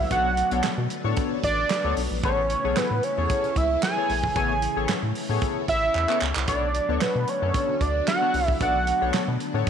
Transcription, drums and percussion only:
0.11 kick loud
0.11 closed hi-hat loud
0.37 closed hi-hat medium
0.51 closed hi-hat medium
0.64 snare loud
0.64 clap loud
0.64 closed hi-hat medium
0.90 closed hi-hat medium
1.17 kick loud
1.17 closed hi-hat loud
1.44 kick medium
1.44 closed hi-hat medium
1.70 snare loud
1.70 clap medium
1.70 closed hi-hat medium
1.97 open hi-hat medium
2.23 kick loud
2.23 closed hi-hat loud
2.50 closed hi-hat medium
2.76 snare loud
2.76 clap loud
2.76 closed hi-hat medium
3.03 closed hi-hat medium
3.30 kick loud
3.30 closed hi-hat medium
3.44 closed hi-hat soft
3.56 kick loud
3.56 closed hi-hat medium
3.82 snare loud
3.82 clap medium
3.82 closed hi-hat medium
4.10 open hi-hat medium
4.24 kick loud
4.36 kick loud
4.36 closed hi-hat loud
4.62 closed hi-hat medium
4.89 snare loud
4.89 clap loud
4.89 closed hi-hat medium
5.15 open hi-hat medium
5.42 kick loud
5.42 closed hi-hat medium
5.68 kick medium
5.68 closed hi-hat medium
5.95 clap medium
6.09 clap medium
6.22 clap loud
6.36 clap loud
6.48 kick loud
6.48 closed hi-hat loud
6.75 closed hi-hat medium
7.01 snare loud
7.01 clap medium
7.01 closed hi-hat loud
7.28 closed hi-hat medium
7.54 kick loud
7.54 closed hi-hat loud
7.81 kick medium
7.81 closed hi-hat medium
8.07 snare loud
8.07 clap medium
8.07 closed hi-hat medium
8.34 open hi-hat medium
8.48 kick medium
8.61 kick loud
8.61 closed hi-hat loud
8.87 closed hi-hat medium
9.14 snare loud
9.14 clap medium
9.14 closed hi-hat medium
9.40 closed hi-hat medium

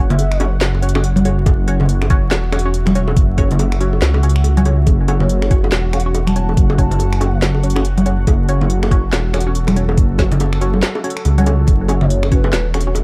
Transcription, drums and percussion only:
0.10 closed hi-hat soft
0.10 low conga loud
0.19 closed hi-hat medium
0.19 high bongo soft
0.32 finger snap medium
0.40 closed hi-hat medium
0.40 high bongo medium
0.61 snare loud
0.61 clap medium
0.61 closed hi-hat medium
0.75 high bongo medium
0.83 closed hi-hat soft
0.89 closed hi-hat medium
0.95 finger snap medium
0.95 high bongo medium
1.04 closed hi-hat medium
1.16 closed hi-hat soft
1.16 high conga loud
1.25 closed hi-hat medium
1.25 high bongo medium
1.46 kick loud
1.46 closed hi-hat medium
1.46 high bongo medium
1.68 closed hi-hat medium
1.80 high bongo medium
1.80 low conga medium
1.89 closed hi-hat medium
2.02 finger snap medium
2.02 high bongo medium
2.10 kick loud
2.10 closed hi-hat medium
2.31 snare loud
2.31 clap medium
2.31 closed hi-hat medium
2.31 high bongo soft
2.52 finger snap medium
2.52 closed hi-hat soft
2.52 high bongo medium
2.59 closed hi-hat medium
2.74 closed hi-hat medium
2.86 finger snap medium
2.86 closed hi-hat soft
2.86 high bongo medium
2.86 high conga loud
2.95 closed hi-hat medium
3.08 high bongo medium
3.17 kick loud
3.17 closed hi-hat medium
3.38 kick medium
3.38 closed hi-hat soft
3.38 high bongo soft
3.51 closed hi-hat soft
3.51 low conga medium
3.59 closed hi-hat medium
3.59 high bongo medium
3.72 finger snap medium
3.81 closed hi-hat medium
3.93 high bongo medium
4.02 snare loud
4.02 clap medium
4.02 closed hi-hat medium
4.14 high bongo medium
4.23 closed hi-hat soft
4.29 closed hi-hat medium
4.36 finger snap medium
4.44 closed hi-hat medium
4.44 high bongo soft
4.57 closed hi-hat soft
4.57 high conga medium
4.65 closed hi-hat medium
4.65 high bongo medium
4.86 kick loud
4.86 closed hi-hat medium
4.86 high bongo soft
5.08 closed hi-hat medium
5.08 high bongo medium
5.20 low conga medium
5.29 closed hi-hat medium
5.42 finger snap medium
5.42 high bongo medium
5.51 kick loud
5.51 closed hi-hat medium
5.64 high bongo medium
5.72 snare loud
5.72 clap medium
5.72 closed hi-hat medium
5.93 finger snap medium
5.93 closed hi-hat soft
5.93 high bongo soft
6.00 closed hi-hat medium
6.15 closed hi-hat medium
6.15 high bongo medium
6.27 finger snap medium
6.27 closed hi-hat soft
6.27 high conga medium
6.36 closed hi-hat medium
6.49 high bongo medium
6.57 kick loud
6.57 closed hi-hat medium
6.70 high bongo medium
6.78 kick medium
6.78 closed hi-hat medium
6.91 closed hi-hat soft
6.91 low conga medium
6.99 closed hi-hat medium
6.99 high bongo medium
7.13 finger snap medium
7.21 closed hi-hat medium
7.21 high bongo medium
7.42 snare loud
7.42 clap medium
7.42 closed hi-hat medium
7.54 high bongo medium
7.63 closed hi-hat soft
7.70 closed hi-hat medium
7.76 finger snap medium
7.76 high bongo medium
7.85 closed hi-hat medium
7.98 closed hi-hat soft
7.98 high conga loud
8.06 closed hi-hat medium
8.06 high bongo medium
8.27 kick loud
8.27 closed hi-hat medium
8.27 high bongo medium
8.49 closed hi-hat medium
8.61 high bongo medium
8.61 low conga medium
8.70 closed hi-hat medium
8.83 finger snap medium
8.83 high bongo medium
8.91 kick loud
8.91 closed hi-hat medium
9.13 snare loud
9.13 clap medium
9.13 closed hi-hat medium
9.13 high bongo medium
9.33 finger snap medium
9.33 closed hi-hat medium
9.33 high bongo medium
9.40 closed hi-hat medium
9.55 closed hi-hat medium
9.67 finger snap medium
9.67 closed hi-hat soft
9.67 high bongo medium
9.67 high conga medium
9.76 closed hi-hat medium
9.89 high bongo medium
9.98 kick loud
9.98 closed hi-hat medium
10.18 kick medium
10.18 snare medium
10.18 closed hi-hat medium
10.18 high bongo medium
10.32 closed hi-hat soft
10.32 low conga medium
10.40 closed hi-hat medium
10.40 high bongo medium
10.53 finger snap medium
10.61 closed hi-hat medium
10.74 high bongo medium
10.74 high conga medium
10.83 snare loud
10.83 clap medium
10.83 closed hi-hat medium
10.95 high bongo medium
11.04 closed hi-hat medium
11.10 closed hi-hat medium
11.17 finger snap medium
11.25 closed hi-hat medium
11.25 high bongo medium
11.38 closed hi-hat soft
11.38 high conga medium
11.46 closed hi-hat medium
11.46 high bongo medium
11.67 kick loud
11.67 closed hi-hat medium
11.67 high bongo soft
11.88 closed hi-hat medium
11.88 high bongo medium
12.01 low conga loud
12.10 closed hi-hat medium
12.23 finger snap medium
12.23 high bongo medium
12.32 kick loud
12.32 closed hi-hat medium
12.44 high bongo medium
12.53 snare loud
12.53 clap medium
12.53 closed hi-hat medium
12.74 finger snap medium
12.74 closed hi-hat medium
12.74 high bongo medium
12.81 closed hi-hat medium
12.95 closed hi-hat medium
12.95 high bongo medium

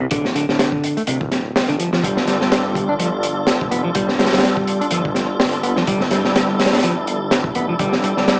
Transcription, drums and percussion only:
0.11 kick loud
0.11 closed hi-hat medium
0.25 snare medium
0.36 closed hi-hat medium
0.49 snare soft
0.59 snare loud
0.59 closed hi-hat medium
0.72 kick medium
0.83 closed hi-hat medium
0.97 closed hi-hat soft
1.07 closed hi-hat medium
1.21 kick medium
1.32 snare medium
1.32 closed hi-hat medium
1.56 snare loud
1.56 open hi-hat medium
1.69 closed hi-hat soft
1.80 closed hi-hat medium
1.93 snare soft
2.04 kick loud
2.04 closed hi-hat loud
2.17 snare soft
2.27 snare soft
2.27 closed hi-hat medium
2.41 snare soft
2.52 snare loud
2.52 closed hi-hat medium
2.75 kick medium
2.75 closed hi-hat medium
3.00 closed hi-hat medium
3.23 closed hi-hat medium
3.47 snare loud
3.47 closed hi-hat medium
3.61 kick loud
3.72 closed hi-hat medium
3.95 kick loud
3.95 closed hi-hat loud
4.09 snare soft
4.19 snare medium
4.19 closed hi-hat medium
4.25 snare medium
4.25 closed hi-hat medium
4.33 snare medium
4.33 closed hi-hat medium
4.38 snare medium
4.38 closed hi-hat medium
4.43 snare loud
4.43 closed hi-hat medium
4.57 kick medium
4.67 closed hi-hat medium
4.81 closed hi-hat soft
4.91 closed hi-hat medium
5.05 kick medium
5.15 snare soft
5.15 closed hi-hat medium
5.40 snare loud
5.40 open hi-hat medium
5.53 closed hi-hat soft
5.63 closed hi-hat medium
5.76 snare soft
5.87 kick loud
5.87 closed hi-hat medium
6.00 snare soft
6.11 snare soft
6.11 closed hi-hat medium
6.25 snare soft
6.35 snare loud
6.35 closed hi-hat medium
6.59 snare medium
6.59 closed hi-hat medium
6.65 snare loud
6.65 closed hi-hat medium
6.73 snare medium
6.73 closed hi-hat medium
6.78 snare medium
6.78 closed hi-hat medium
6.83 closed hi-hat medium
7.07 closed hi-hat medium
7.31 snare loud
7.31 closed hi-hat medium
7.44 kick loud
7.55 closed hi-hat medium
7.79 kick loud
7.79 closed hi-hat medium
7.93 snare medium
8.04 closed hi-hat medium
8.17 snare soft
8.28 snare loud
8.28 closed hi-hat medium

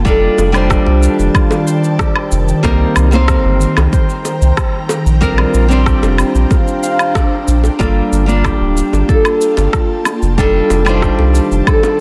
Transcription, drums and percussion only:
0.05 kick loud
0.05 shaker soft
0.38 high bongo medium
0.38 shaker medium
0.54 low woodblock medium
0.54 shaker soft
0.70 kick loud
0.70 cross-stick loud
0.70 shaker soft
0.86 high bongo soft
1.03 shaker medium
1.19 shaker soft
1.35 kick loud
1.35 low woodblock medium
1.35 shaker soft
1.51 high bongo medium
1.51 shaker soft
1.68 shaker medium
1.84 shaker soft
1.99 kick loud
1.99 cross-stick loud
1.99 high bongo medium
1.99 shaker soft
2.16 low woodblock medium
2.32 shaker medium
2.48 shaker soft
2.64 kick loud
2.64 high bongo medium
2.64 shaker soft
2.96 low woodblock medium
2.96 shaker medium
3.12 high bongo soft
3.12 shaker soft
3.28 kick loud
3.28 cross-stick loud
3.28 shaker soft
3.61 shaker medium
3.77 high bongo medium
3.77 low woodblock medium
3.77 shaker soft
3.93 kick loud
3.93 shaker soft
4.10 shaker soft
4.25 high bongo medium
4.25 shaker medium
4.42 shaker soft
4.57 kick loud
4.57 cross-stick loud
4.57 low woodblock medium
4.57 shaker soft
4.89 high bongo medium
4.89 shaker medium
5.07 shaker soft
5.22 kick loud
5.22 shaker soft
5.38 high bongo medium
5.38 low woodblock medium
5.54 shaker medium
5.71 shaker soft
5.86 kick loud
5.86 cross-stick loud
5.86 shaker soft
6.03 high bongo medium
6.03 shaker soft
6.18 low woodblock medium
6.18 shaker medium
6.35 shaker soft
6.51 kick loud
6.51 high bongo medium
6.51 shaker soft
6.68 shaker soft
6.83 shaker medium
6.99 low woodblock medium
6.99 shaker soft
7.15 kick loud
7.15 cross-stick medium
7.15 high bongo medium
7.15 shaker soft
7.48 shaker medium
7.64 high bongo medium
7.64 shaker soft
7.80 kick loud
7.80 high bongo medium
7.80 shaker soft
8.13 shaker medium
8.29 shaker soft
8.44 kick loud
8.44 cross-stick medium
8.44 high bongo medium
8.44 low woodblock medium
8.44 shaker soft
8.77 shaker medium
8.93 high bongo medium
8.93 shaker soft
9.09 kick loud
9.09 shaker soft
9.25 low woodblock medium
9.25 shaker soft
9.41 shaker medium
9.57 high bongo medium
9.57 shaker soft
9.73 kick loud
9.73 cross-stick loud
9.73 shaker soft
10.05 high bongo medium
10.05 low woodblock medium
10.05 shaker medium
10.22 shaker soft
10.38 kick loud
10.38 shaker soft
10.70 high bongo medium
10.70 shaker medium
10.86 low woodblock medium
10.86 shaker soft
11.02 kick loud
11.02 cross-stick medium
11.02 shaker soft
11.19 high bongo medium
11.35 shaker medium
11.52 shaker soft
11.67 kick loud
11.67 low woodblock medium
11.67 shaker soft
11.83 high bongo medium
11.83 shaker soft

